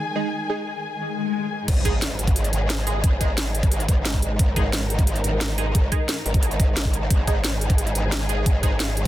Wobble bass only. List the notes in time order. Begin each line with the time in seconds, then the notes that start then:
1.68 G#1
2.53 G#1
3.04 G#1
3.88 G#1
4.39 G#1
5.24 G#1
5.75 G#1
6.26 G#1
6.77 G#1
7.11 G#1
7.95 G#1
8.46 G#1